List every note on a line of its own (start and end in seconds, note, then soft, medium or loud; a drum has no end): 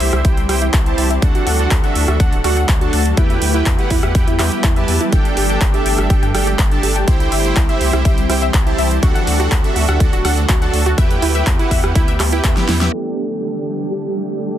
0.00 0.11 C2 medium
0.00 1.20 E3 medium
0.00 1.20 G3 medium
0.00 1.20 C4 medium
0.00 0.22 E4 medium
0.00 0.22 G4 medium
0.00 1.20 G4 medium
0.00 0.22 C5 medium
0.00 0.22 E5 medium
0.00 0.07 E5 medium
0.00 open hi-hat medium
0.13 0.23 C2 medium
0.13 cross-stick medium
0.13 closed hi-hat soft
0.25 0.35 C2 medium
0.25 0.35 E4 medium
0.25 0.38 E4 medium
0.25 0.38 G4 medium
0.25 0.38 C5 medium
0.25 0.38 G5 medium
0.25 kick loud
0.25 closed hi-hat medium
0.37 0.47 C2 medium
0.37 0.44 E5 medium
0.37 closed hi-hat soft
0.49 0.70 C2 medium
0.49 0.63 E4 medium
0.49 0.63 G4 medium
0.49 0.63 C5 medium
0.49 0.63 G5 medium
0.49 cross-stick medium
0.49 open hi-hat loud
0.62 0.72 E4 medium
0.62 closed hi-hat soft
0.73 0.94 C2 medium
0.73 0.81 E5 medium
0.73 kick loud
0.73 clap loud
0.73 closed hi-hat medium
0.86 1.07 E4 medium
0.86 1.07 G4 medium
0.86 1.07 C5 medium
0.86 1.07 A5 medium
0.86 closed hi-hat soft
0.98 1.18 C2 medium
0.98 1.08 E4 medium
0.98 open hi-hat medium
1.10 1.17 E5 medium
1.10 closed hi-hat soft
1.22 1.33 D2 loud
1.22 3.16 D3 medium
1.22 3.16 F#3 medium
1.22 3.16 A3 medium
1.22 1.56 D4 medium
1.22 1.56 F#4 medium
1.22 3.16 F#4 medium
1.22 1.56 A4 medium
1.22 1.56 F#5 loud
1.22 kick loud
1.22 closed hi-hat medium
1.35 1.45 F#4 medium
1.35 closed hi-hat soft
1.47 1.67 D2 medium
1.47 1.54 F#5 medium
1.47 open hi-hat loud
1.59 1.72 D4 loud
1.59 1.72 F#4 medium
1.59 1.72 A4 medium
1.59 1.72 F#5 loud
1.59 closed hi-hat soft
1.71 1.82 D2 medium
1.71 1.82 F#4 medium
1.71 kick loud
1.71 clap loud
1.71 closed hi-hat medium
1.84 2.17 D4 medium
1.84 2.17 F#4 medium
1.84 2.17 A4 medium
1.84 2.17 E5 loud
1.84 1.90 F#5 medium
1.84 closed hi-hat soft
1.95 2.06 D2 medium
1.95 open hi-hat medium
2.08 2.18 D2 medium
2.08 2.18 F#4 medium
2.08 cross-stick medium
2.08 closed hi-hat soft
2.20 2.30 D2 medium
2.20 2.33 D4 medium
2.20 2.33 F#4 medium
2.20 2.33 A4 medium
2.20 2.27 F#5 medium
2.20 2.33 F#5 medium
2.20 kick loud
2.20 closed hi-hat medium
2.33 2.42 D1 loud
2.33 closed hi-hat soft
2.44 2.65 D2 medium
2.44 2.58 D4 medium
2.44 2.55 F#4 medium
2.44 2.58 F#4 medium
2.44 2.58 A4 medium
2.44 2.58 F#5 medium
2.44 cross-stick medium
2.44 open hi-hat loud
2.57 2.63 F#5 medium
2.57 closed hi-hat soft
2.69 2.89 D2 medium
2.69 kick loud
2.69 clap loud
2.69 closed hi-hat medium
2.81 3.02 D4 medium
2.81 2.91 F#4 medium
2.81 3.02 F#4 medium
2.81 3.02 A4 medium
2.81 3.02 A5 medium
2.81 closed hi-hat soft
2.93 3.14 D2 loud
2.93 3.00 F#5 medium
2.93 open hi-hat loud
3.06 closed hi-hat soft
3.17 3.38 E2 medium
3.17 5.11 E3 medium
3.17 7.04 G3 medium
3.17 5.11 B3 medium
3.17 3.51 E4 loud
3.17 3.28 E4 medium
3.17 3.51 G4 medium
3.17 7.04 G4 medium
3.17 3.51 B4 medium
3.17 3.51 G5 loud
3.17 kick loud
3.17 closed hi-hat medium
3.30 3.37 E5 medium
3.30 closed hi-hat soft
3.42 3.62 D2 medium
3.42 open hi-hat loud
3.54 3.67 E4 medium
3.54 3.64 E4 medium
3.54 3.67 G4 medium
3.54 3.67 B4 medium
3.54 3.67 G5 loud
3.54 closed hi-hat soft
3.66 3.77 E2 loud
3.66 3.73 E5 medium
3.66 kick loud
3.66 clap loud
3.66 closed hi-hat medium
3.79 4.12 E4 medium
3.79 4.12 G4 medium
3.79 4.12 B4 medium
3.79 4.12 F#5 loud
3.79 closed hi-hat soft
3.90 4.01 E2 medium
3.90 4.01 E4 medium
3.90 kick medium
3.90 open hi-hat medium
4.03 4.13 E2 medium
4.03 4.10 E5 medium
4.03 cross-stick medium
4.03 closed hi-hat soft
4.15 4.26 E2 loud
4.15 4.29 E4 medium
4.15 4.29 G4 medium
4.15 4.29 B4 medium
4.15 4.29 G5 medium
4.15 kick loud
4.15 closed hi-hat medium
4.27 4.37 E2 loud
4.27 4.37 E4 medium
4.27 closed hi-hat soft
4.39 4.50 E2 medium
4.39 4.53 E4 medium
4.39 4.53 G4 medium
4.39 4.53 B4 medium
4.39 4.46 E5 medium
4.39 4.53 G5 medium
4.39 cross-stick medium
4.39 clap medium
4.39 open hi-hat loud
4.52 closed hi-hat soft
4.64 4.84 E2 loud
4.64 4.74 E4 medium
4.64 kick loud
4.64 clap loud
4.64 closed hi-hat medium
4.76 4.97 E4 medium
4.76 4.97 G4 medium
4.76 4.97 B4 medium
4.76 4.83 E5 medium
4.76 4.97 A5 medium
4.76 closed hi-hat soft
4.88 4.99 E2 loud
4.88 open hi-hat loud
5.01 5.11 E4 medium
5.01 closed hi-hat soft
5.12 5.23 G1 medium
5.12 7.06 D3 medium
5.12 7.06 A3 medium
5.12 5.46 D4 medium
5.12 5.47 G4 medium
5.12 5.47 A4 medium
5.12 5.20 G5 medium
5.12 5.47 G5 loud
5.12 kick loud
5.12 closed hi-hat medium
5.25 closed hi-hat soft
5.37 5.58 G1 medium
5.37 5.48 G4 medium
5.37 open hi-hat loud
5.50 5.62 D4 loud
5.50 5.62 G4 medium
5.50 5.62 A4 medium
5.50 5.62 G5 loud
5.50 5.56 G5 medium
5.50 closed hi-hat soft
5.61 5.72 G1 medium
5.61 kick loud
5.61 clap loud
5.61 closed hi-hat medium
5.74 6.07 D4 medium
5.74 5.84 G4 medium
5.74 6.07 G4 medium
5.74 6.07 A4 medium
5.74 6.07 E5 medium
5.74 closed hi-hat soft
5.86 5.96 G1 loud
5.86 5.93 G5 medium
5.86 open hi-hat medium
5.98 6.08 G1 medium
5.98 cross-stick medium
5.98 closed hi-hat soft
6.10 6.21 G1 medium
6.10 6.24 D4 medium
6.10 6.21 G4 medium
6.10 6.24 G4 medium
6.10 6.24 A4 medium
6.10 6.24 G5 medium
6.10 kick loud
6.10 closed hi-hat medium
6.23 6.33 G2 loud
6.23 6.29 G5 medium
6.23 closed hi-hat soft
6.34 6.55 G1 medium
6.34 6.48 D4 medium
6.34 6.48 G4 medium
6.34 6.48 A4 medium
6.34 6.48 G5 medium
6.34 cross-stick medium
6.34 open hi-hat loud
6.47 6.57 G4 medium
6.47 closed hi-hat soft
6.59 6.79 G1 medium
6.59 6.66 G5 medium
6.59 kick loud
6.59 clap loud
6.59 closed hi-hat medium
6.71 6.93 D4 medium
6.71 6.93 G4 medium
6.71 6.93 A4 medium
6.71 6.93 A5 medium
6.71 closed hi-hat soft
6.83 7.04 G1 loud
6.83 6.94 G4 medium
6.83 open hi-hat loud
6.96 7.02 G5 medium
6.96 closed hi-hat soft
7.07 7.28 C2 medium
7.07 9.01 E3 medium
7.07 9.01 G3 medium
7.07 9.01 C4 medium
7.07 7.42 E4 medium
7.07 9.01 G4 medium
7.07 7.42 G4 medium
7.07 7.42 C5 medium
7.07 7.42 G5 loud
7.07 kick loud
7.07 closed hi-hat medium
7.20 7.30 E4 medium
7.20 closed hi-hat soft
7.32 7.53 G1 medium
7.32 7.39 E5 medium
7.32 open hi-hat loud
7.45 7.58 E4 medium
7.45 7.58 G4 medium
7.45 7.58 C5 medium
7.45 7.58 G5 loud
7.45 closed hi-hat soft
7.56 7.67 C2 loud
7.56 7.67 E4 medium
7.56 kick loud
7.56 clap loud
7.56 closed hi-hat medium
7.69 8.02 E4 medium
7.69 8.02 G4 medium
7.69 8.02 C5 medium
7.69 8.02 E5 loud
7.69 7.76 E5 medium
7.69 closed hi-hat soft
7.81 7.91 C2 medium
7.81 open hi-hat medium
7.93 8.03 C2 medium
7.93 8.03 E4 medium
7.93 cross-stick medium
7.93 closed hi-hat soft
8.05 8.16 C2 medium
8.05 8.19 E4 medium
8.05 8.19 G4 medium
8.05 8.19 C5 medium
8.05 8.12 E5 medium
8.05 8.19 G5 medium
8.05 kick loud
8.05 closed hi-hat medium
8.18 8.28 C2 medium
8.18 closed hi-hat soft
8.29 8.50 C2 medium
8.29 8.40 E4 medium
8.29 8.43 E4 medium
8.29 8.43 G4 medium
8.29 8.43 C5 medium
8.29 8.43 G5 medium
8.29 cross-stick medium
8.29 open hi-hat loud
8.42 8.49 E5 medium
8.42 closed hi-hat soft
8.54 8.75 C2 medium
8.54 kick loud
8.54 clap loud
8.54 closed hi-hat medium
8.66 8.76 E4 medium
8.66 8.88 E4 medium
8.66 8.88 G4 medium
8.66 8.88 C5 medium
8.66 8.88 A5 medium
8.66 closed hi-hat soft
8.78 8.99 C2 medium
8.78 8.85 E5 medium
8.78 open hi-hat medium
8.91 closed hi-hat soft
9.03 9.13 D2 loud
9.03 10.96 D3 medium
9.03 10.96 F#3 medium
9.03 10.96 A3 medium
9.03 9.37 D4 medium
9.03 9.13 F#4 medium
9.03 10.96 F#4 medium
9.03 9.37 F#4 medium
9.03 9.37 A4 medium
9.03 9.37 F#5 loud
9.03 kick loud
9.03 closed hi-hat loud
9.15 9.22 F#5 medium
9.15 closed hi-hat soft
9.27 9.48 D2 medium
9.27 open hi-hat loud
9.40 9.53 D4 medium
9.40 9.50 F#4 medium
9.40 9.53 F#4 medium
9.40 9.53 A4 medium
9.40 9.53 F#5 loud
9.40 closed hi-hat soft
9.51 9.62 D2 medium
9.51 9.59 F#5 medium
9.51 kick loud
9.51 clap loud
9.51 closed hi-hat loud
9.64 9.98 D4 medium
9.64 9.98 F#4 medium
9.64 9.97 A4 medium
9.64 9.98 E5 medium
9.64 closed hi-hat soft
9.76 9.86 D2 loud
9.76 9.86 F#4 medium
9.76 open hi-hat medium
9.88 9.98 D2 medium
9.88 9.95 F#5 medium
9.88 cross-stick medium
9.88 closed hi-hat soft
10.00 10.11 D2 medium
10.00 10.14 D4 medium
10.00 10.14 F#4 medium
10.00 10.14 A4 medium
10.00 10.14 F#5 medium
10.00 kick loud
10.00 closed hi-hat medium
10.13 10.23 D1 loud
10.13 10.23 F#4 medium
10.13 closed hi-hat soft
10.25 10.45 D2 loud
10.25 10.38 D4 medium
10.25 10.38 F#4 medium
10.25 10.38 A4 medium
10.25 10.32 F#5 medium
10.25 10.38 F#5 medium
10.25 cross-stick medium
10.25 open hi-hat loud
10.37 closed hi-hat soft
10.49 10.70 D2 medium
10.49 10.60 F#4 medium
10.49 kick loud
10.49 clap loud
10.49 closed hi-hat loud
10.62 10.83 D4 medium
10.62 10.83 F#4 medium
10.62 10.83 A4 medium
10.62 10.68 F#5 medium
10.62 10.83 A5 medium
10.62 closed hi-hat soft
10.73 10.94 D2 loud
10.73 open hi-hat medium
10.86 10.96 F#4 medium
10.86 closed hi-hat soft
10.98 11.18 E2 medium
10.98 12.91 E3 medium
10.98 12.91 G3 medium
10.98 12.91 B3 medium
10.98 11.32 E4 medium
10.98 11.32 G4 medium
10.98 12.91 G4 medium
10.98 11.32 B4 medium
10.98 11.05 E5 medium
10.98 11.32 G5 loud
10.98 kick loud
10.98 closed hi-hat loud
11.11 closed hi-hat soft
11.22 11.43 D2 medium
11.22 11.33 E4 medium
11.22 open hi-hat loud
11.35 11.48 E4 medium
11.35 11.48 G4 medium
11.35 11.48 B4 medium
11.35 11.42 E5 medium
11.35 11.48 G5 loud
11.35 closed hi-hat soft
11.47 11.57 E2 loud
11.47 kick loud
11.47 clap loud
11.47 closed hi-hat medium
11.59 11.93 E4 medium
11.59 11.69 E4 medium
11.59 11.93 G4 medium
11.59 11.93 B4 medium
11.59 11.93 F#5 loud
11.59 closed hi-hat soft
11.71 11.82 E2 medium
11.71 11.78 E5 medium
11.71 kick medium
11.71 open hi-hat medium
11.84 11.93 E2 medium
11.84 cross-stick medium
11.84 closed hi-hat soft
11.95 12.06 D2 loud
11.95 12.09 E4 medium
11.95 12.06 E4 medium
11.95 12.09 G4 medium
11.95 12.09 B4 medium
11.95 12.09 G5 medium
11.95 kick loud
11.95 closed hi-hat loud
12.08 12.18 D2 medium
12.08 12.15 E5 medium
12.08 closed hi-hat soft
12.20 12.40 D2 medium
12.20 cross-stick medium
12.20 clap medium
12.20 open hi-hat loud
12.32 12.54 E4 loud
12.32 12.42 E4 medium
12.32 12.54 G4 medium
12.32 12.54 B4 medium
12.32 12.54 G5 loud
12.32 closed hi-hat soft
12.44 12.55 E2 medium
12.44 12.51 E5 medium
12.44 kick loud
12.44 clap loud
12.44 closed hi-hat loud
12.57 12.70 E4 medium
12.57 12.70 G4 medium
12.57 12.70 B4 medium
12.57 12.70 G5 medium
12.57 snare medium
12.57 closed hi-hat soft
12.69 12.89 E2 medium
12.69 12.79 E4 medium
12.69 snare medium
12.69 open hi-hat medium
12.81 12.90 E4 medium
12.81 12.90 G4 medium
12.81 12.90 B4 medium
12.81 12.88 E5 medium
12.81 12.90 G5 medium
12.81 snare medium
12.81 closed hi-hat soft
12.93 14.58 D3 medium
12.93 14.58 G3 medium
12.93 14.58 A3 medium
12.93 14.58 D4 medium
12.93 14.58 G4 medium
12.93 13.81 A4 loud
12.93 14.58 A4 medium
12.93 14.58 G5 medium
12.93 14.58 A5 medium
12.93 downlifter medium
13.91 14.35 G4 medium
14.39 14.58 A4 medium